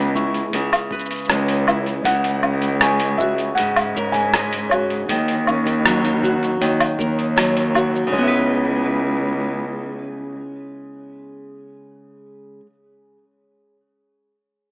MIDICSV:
0, 0, Header, 1, 6, 480
1, 0, Start_track
1, 0, Tempo, 759494
1, 1298, Time_signature, 4, 2, 24, 8
1, 9299, End_track
2, 0, Start_track
2, 0, Title_t, "Felt piano"
2, 0, Program_c, 0, 0
2, 0, Note_on_c, 0, 76, 82
2, 308, Note_off_c, 0, 76, 0
2, 1297, Note_on_c, 0, 78, 107
2, 1776, Note_on_c, 0, 80, 104
2, 1792, Note_off_c, 0, 78, 0
2, 2008, Note_on_c, 0, 76, 101
2, 2024, Note_off_c, 0, 80, 0
2, 2244, Note_on_c, 0, 78, 93
2, 2261, Note_off_c, 0, 76, 0
2, 2606, Note_on_c, 0, 80, 108
2, 2622, Note_off_c, 0, 78, 0
2, 2967, Note_on_c, 0, 73, 90
2, 2983, Note_off_c, 0, 80, 0
2, 4627, Note_off_c, 0, 73, 0
2, 9299, End_track
3, 0, Start_track
3, 0, Title_t, "Celesta"
3, 0, Program_c, 1, 8
3, 0, Control_c, 1, 64, 127
3, 0, Note_on_c, 1, 73, 76
3, 98, Note_on_c, 1, 85, 73
3, 235, Note_off_c, 1, 85, 0
3, 815, Note_off_c, 1, 73, 0
3, 815, Note_on_c, 1, 73, 80
3, 1045, Note_off_c, 1, 73, 0
3, 1305, Control_c, 1, 64, 0
3, 1401, Control_c, 1, 64, 127
3, 1780, Note_on_c, 1, 85, 74
3, 1916, Note_off_c, 1, 85, 0
3, 2506, Note_on_c, 1, 73, 74
3, 2730, Note_off_c, 1, 73, 0
3, 3227, Control_c, 1, 64, 0
3, 3323, Control_c, 1, 64, 127
3, 3462, Note_on_c, 1, 85, 78
3, 3597, Note_off_c, 1, 85, 0
3, 4177, Note_on_c, 1, 73, 82
3, 4405, Note_off_c, 1, 73, 0
3, 4652, Note_on_c, 1, 73, 106
3, 4883, Note_off_c, 1, 73, 0
3, 5130, Note_on_c, 1, 73, 86
3, 5147, Control_c, 1, 64, 0
3, 5241, Control_c, 1, 64, 127
3, 5357, Note_off_c, 1, 73, 0
3, 8647, Control_c, 1, 64, 0
3, 9299, End_track
4, 0, Start_track
4, 0, Title_t, "Nylon-string guitar"
4, 0, Program_c, 2, 24
4, 0, Note_on_c, 2, 49, 90
4, 0, Note_on_c, 2, 56, 69
4, 0, Note_on_c, 2, 59, 65
4, 0, Note_on_c, 2, 64, 61
4, 0, Note_on_c, 2, 71, 68
4, 89, Note_off_c, 2, 64, 0
4, 97, Note_on_c, 2, 64, 67
4, 335, Note_off_c, 2, 49, 0
4, 342, Note_on_c, 2, 49, 92
4, 575, Note_off_c, 2, 71, 0
4, 582, Note_on_c, 2, 71, 72
4, 821, Note_off_c, 2, 56, 0
4, 823, Note_on_c, 2, 56, 76
4, 1049, Note_off_c, 2, 64, 0
4, 1056, Note_on_c, 2, 64, 63
4, 1293, Note_off_c, 2, 49, 0
4, 1300, Note_on_c, 2, 49, 94
4, 1345, Note_off_c, 2, 59, 0
4, 1345, Note_off_c, 2, 64, 0
4, 1348, Note_off_c, 2, 71, 0
4, 1536, Note_on_c, 2, 61, 64
4, 1776, Note_off_c, 2, 56, 0
4, 1778, Note_on_c, 2, 56, 71
4, 2023, Note_on_c, 2, 66, 66
4, 2257, Note_off_c, 2, 49, 0
4, 2265, Note_on_c, 2, 49, 84
4, 2505, Note_on_c, 2, 70, 74
4, 2735, Note_off_c, 2, 56, 0
4, 2742, Note_on_c, 2, 56, 77
4, 2979, Note_off_c, 2, 66, 0
4, 2981, Note_on_c, 2, 66, 61
4, 3220, Note_off_c, 2, 49, 0
4, 3223, Note_on_c, 2, 51, 86
4, 3268, Note_off_c, 2, 56, 0
4, 3459, Note_off_c, 2, 61, 0
4, 3462, Note_on_c, 2, 61, 64
4, 3699, Note_on_c, 2, 54, 76
4, 3937, Note_off_c, 2, 66, 0
4, 3940, Note_on_c, 2, 66, 68
4, 4172, Note_off_c, 2, 51, 0
4, 4180, Note_on_c, 2, 51, 87
4, 4416, Note_off_c, 2, 70, 0
4, 4418, Note_on_c, 2, 70, 70
4, 4648, Note_off_c, 2, 54, 0
4, 4655, Note_on_c, 2, 54, 74
4, 4887, Note_off_c, 2, 66, 0
4, 4895, Note_on_c, 2, 66, 69
4, 5097, Note_off_c, 2, 51, 0
4, 5099, Note_on_c, 2, 49, 88
4, 5135, Note_off_c, 2, 54, 0
4, 5138, Note_on_c, 2, 56, 84
4, 5169, Note_off_c, 2, 61, 0
4, 5172, Note_on_c, 2, 59, 92
4, 5185, Note_off_c, 2, 66, 0
4, 5186, Note_off_c, 2, 70, 0
4, 5203, Note_on_c, 2, 64, 82
4, 5231, Note_on_c, 2, 71, 92
4, 7963, Note_off_c, 2, 49, 0
4, 8001, Note_off_c, 2, 56, 0
4, 8023, Note_off_c, 2, 59, 0
4, 8038, Note_off_c, 2, 64, 0
4, 8053, Note_off_c, 2, 71, 0
4, 9299, End_track
5, 0, Start_track
5, 0, Title_t, "Cello"
5, 0, Program_c, 3, 42
5, 0, Note_on_c, 3, 37, 109
5, 279, Note_off_c, 3, 37, 0
5, 337, Note_on_c, 3, 37, 85
5, 421, Note_off_c, 3, 37, 0
5, 815, Note_on_c, 3, 37, 102
5, 1238, Note_off_c, 3, 37, 0
5, 1294, Note_on_c, 3, 37, 103
5, 2198, Note_off_c, 3, 37, 0
5, 2259, Note_on_c, 3, 44, 92
5, 3160, Note_off_c, 3, 44, 0
5, 3215, Note_on_c, 3, 39, 108
5, 4118, Note_off_c, 3, 39, 0
5, 4177, Note_on_c, 3, 39, 91
5, 4261, Note_off_c, 3, 39, 0
5, 4417, Note_on_c, 3, 39, 103
5, 5079, Note_off_c, 3, 39, 0
5, 5137, Note_on_c, 3, 37, 97
5, 6552, Note_off_c, 3, 37, 0
5, 9299, End_track
6, 0, Start_track
6, 0, Title_t, "Drums"
6, 93, Note_on_c, 9, 36, 94
6, 101, Note_on_c, 9, 82, 71
6, 156, Note_off_c, 9, 36, 0
6, 164, Note_off_c, 9, 82, 0
6, 217, Note_on_c, 9, 46, 33
6, 223, Note_on_c, 9, 82, 44
6, 281, Note_off_c, 9, 46, 0
6, 287, Note_off_c, 9, 82, 0
6, 336, Note_on_c, 9, 46, 64
6, 399, Note_off_c, 9, 46, 0
6, 460, Note_on_c, 9, 46, 43
6, 460, Note_on_c, 9, 77, 83
6, 466, Note_on_c, 9, 82, 34
6, 523, Note_off_c, 9, 46, 0
6, 523, Note_off_c, 9, 77, 0
6, 529, Note_off_c, 9, 82, 0
6, 573, Note_on_c, 9, 36, 96
6, 587, Note_on_c, 9, 82, 32
6, 627, Note_off_c, 9, 82, 0
6, 627, Note_on_c, 9, 82, 42
6, 636, Note_off_c, 9, 36, 0
6, 666, Note_off_c, 9, 82, 0
6, 666, Note_on_c, 9, 82, 45
6, 699, Note_on_c, 9, 46, 30
6, 705, Note_off_c, 9, 82, 0
6, 705, Note_on_c, 9, 82, 50
6, 723, Note_off_c, 9, 82, 0
6, 723, Note_on_c, 9, 82, 31
6, 743, Note_off_c, 9, 82, 0
6, 743, Note_on_c, 9, 82, 53
6, 762, Note_off_c, 9, 46, 0
6, 765, Note_off_c, 9, 82, 0
6, 765, Note_on_c, 9, 82, 22
6, 789, Note_off_c, 9, 82, 0
6, 789, Note_on_c, 9, 82, 61
6, 806, Note_off_c, 9, 82, 0
6, 806, Note_on_c, 9, 82, 15
6, 819, Note_on_c, 9, 37, 98
6, 819, Note_on_c, 9, 46, 71
6, 825, Note_off_c, 9, 82, 0
6, 825, Note_on_c, 9, 82, 34
6, 882, Note_off_c, 9, 37, 0
6, 882, Note_off_c, 9, 46, 0
6, 888, Note_off_c, 9, 82, 0
6, 938, Note_on_c, 9, 46, 43
6, 1001, Note_off_c, 9, 46, 0
6, 1060, Note_on_c, 9, 77, 84
6, 1066, Note_on_c, 9, 82, 75
6, 1123, Note_off_c, 9, 77, 0
6, 1129, Note_off_c, 9, 82, 0
6, 1178, Note_on_c, 9, 46, 28
6, 1184, Note_on_c, 9, 82, 40
6, 1241, Note_off_c, 9, 46, 0
6, 1247, Note_off_c, 9, 82, 0
6, 1293, Note_on_c, 9, 36, 110
6, 1297, Note_on_c, 9, 46, 70
6, 1303, Note_on_c, 9, 82, 30
6, 1356, Note_off_c, 9, 36, 0
6, 1360, Note_off_c, 9, 46, 0
6, 1366, Note_off_c, 9, 82, 0
6, 1417, Note_on_c, 9, 46, 52
6, 1480, Note_off_c, 9, 46, 0
6, 1536, Note_on_c, 9, 77, 61
6, 1599, Note_off_c, 9, 77, 0
6, 1654, Note_on_c, 9, 46, 32
6, 1660, Note_on_c, 9, 82, 41
6, 1717, Note_off_c, 9, 46, 0
6, 1723, Note_off_c, 9, 82, 0
6, 1775, Note_on_c, 9, 37, 106
6, 1775, Note_on_c, 9, 46, 73
6, 1781, Note_on_c, 9, 82, 34
6, 1838, Note_off_c, 9, 37, 0
6, 1838, Note_off_c, 9, 46, 0
6, 1845, Note_off_c, 9, 82, 0
6, 1894, Note_on_c, 9, 46, 51
6, 1957, Note_off_c, 9, 46, 0
6, 2015, Note_on_c, 9, 36, 101
6, 2021, Note_on_c, 9, 82, 77
6, 2078, Note_off_c, 9, 36, 0
6, 2084, Note_off_c, 9, 82, 0
6, 2138, Note_on_c, 9, 46, 30
6, 2144, Note_on_c, 9, 82, 44
6, 2201, Note_off_c, 9, 46, 0
6, 2207, Note_off_c, 9, 82, 0
6, 2259, Note_on_c, 9, 46, 71
6, 2266, Note_on_c, 9, 82, 32
6, 2323, Note_off_c, 9, 46, 0
6, 2329, Note_off_c, 9, 82, 0
6, 2379, Note_on_c, 9, 46, 47
6, 2379, Note_on_c, 9, 77, 85
6, 2442, Note_off_c, 9, 46, 0
6, 2442, Note_off_c, 9, 77, 0
6, 2496, Note_on_c, 9, 36, 54
6, 2506, Note_on_c, 9, 82, 73
6, 2559, Note_off_c, 9, 36, 0
6, 2569, Note_off_c, 9, 82, 0
6, 2616, Note_on_c, 9, 36, 94
6, 2617, Note_on_c, 9, 46, 32
6, 2623, Note_on_c, 9, 82, 42
6, 2679, Note_off_c, 9, 36, 0
6, 2680, Note_off_c, 9, 46, 0
6, 2686, Note_off_c, 9, 82, 0
6, 2740, Note_on_c, 9, 37, 106
6, 2740, Note_on_c, 9, 46, 73
6, 2746, Note_on_c, 9, 82, 33
6, 2803, Note_off_c, 9, 37, 0
6, 2803, Note_off_c, 9, 46, 0
6, 2809, Note_off_c, 9, 82, 0
6, 2860, Note_on_c, 9, 46, 46
6, 2924, Note_off_c, 9, 46, 0
6, 2978, Note_on_c, 9, 77, 79
6, 2984, Note_on_c, 9, 82, 76
6, 3042, Note_off_c, 9, 77, 0
6, 3048, Note_off_c, 9, 82, 0
6, 3099, Note_on_c, 9, 46, 31
6, 3162, Note_off_c, 9, 46, 0
6, 3216, Note_on_c, 9, 36, 115
6, 3219, Note_on_c, 9, 46, 73
6, 3225, Note_on_c, 9, 82, 44
6, 3279, Note_off_c, 9, 36, 0
6, 3282, Note_off_c, 9, 46, 0
6, 3288, Note_off_c, 9, 82, 0
6, 3338, Note_on_c, 9, 46, 51
6, 3401, Note_off_c, 9, 46, 0
6, 3459, Note_on_c, 9, 77, 61
6, 3465, Note_on_c, 9, 82, 72
6, 3522, Note_off_c, 9, 77, 0
6, 3528, Note_off_c, 9, 82, 0
6, 3576, Note_on_c, 9, 36, 61
6, 3581, Note_on_c, 9, 46, 34
6, 3587, Note_on_c, 9, 82, 44
6, 3640, Note_off_c, 9, 36, 0
6, 3644, Note_off_c, 9, 46, 0
6, 3650, Note_off_c, 9, 82, 0
6, 3701, Note_on_c, 9, 37, 111
6, 3701, Note_on_c, 9, 46, 75
6, 3707, Note_on_c, 9, 82, 36
6, 3764, Note_off_c, 9, 37, 0
6, 3764, Note_off_c, 9, 46, 0
6, 3770, Note_off_c, 9, 82, 0
6, 3821, Note_on_c, 9, 46, 49
6, 3885, Note_off_c, 9, 46, 0
6, 3936, Note_on_c, 9, 36, 107
6, 3947, Note_on_c, 9, 82, 70
6, 4000, Note_off_c, 9, 36, 0
6, 4010, Note_off_c, 9, 82, 0
6, 4062, Note_on_c, 9, 46, 31
6, 4068, Note_on_c, 9, 82, 45
6, 4125, Note_off_c, 9, 46, 0
6, 4131, Note_off_c, 9, 82, 0
6, 4181, Note_on_c, 9, 46, 74
6, 4187, Note_on_c, 9, 82, 34
6, 4244, Note_off_c, 9, 46, 0
6, 4251, Note_off_c, 9, 82, 0
6, 4300, Note_on_c, 9, 46, 43
6, 4300, Note_on_c, 9, 77, 78
6, 4364, Note_off_c, 9, 46, 0
6, 4364, Note_off_c, 9, 77, 0
6, 4417, Note_on_c, 9, 36, 105
6, 4426, Note_on_c, 9, 82, 72
6, 4480, Note_off_c, 9, 36, 0
6, 4489, Note_off_c, 9, 82, 0
6, 4543, Note_on_c, 9, 46, 31
6, 4549, Note_on_c, 9, 82, 43
6, 4606, Note_off_c, 9, 46, 0
6, 4612, Note_off_c, 9, 82, 0
6, 4662, Note_on_c, 9, 37, 106
6, 4662, Note_on_c, 9, 46, 79
6, 4668, Note_on_c, 9, 82, 36
6, 4725, Note_off_c, 9, 37, 0
6, 4725, Note_off_c, 9, 46, 0
6, 4731, Note_off_c, 9, 82, 0
6, 4783, Note_on_c, 9, 46, 49
6, 4846, Note_off_c, 9, 46, 0
6, 4900, Note_on_c, 9, 77, 75
6, 4906, Note_on_c, 9, 82, 74
6, 4964, Note_off_c, 9, 77, 0
6, 4970, Note_off_c, 9, 82, 0
6, 5027, Note_on_c, 9, 82, 41
6, 5090, Note_off_c, 9, 82, 0
6, 5137, Note_on_c, 9, 36, 106
6, 5200, Note_off_c, 9, 36, 0
6, 9299, End_track
0, 0, End_of_file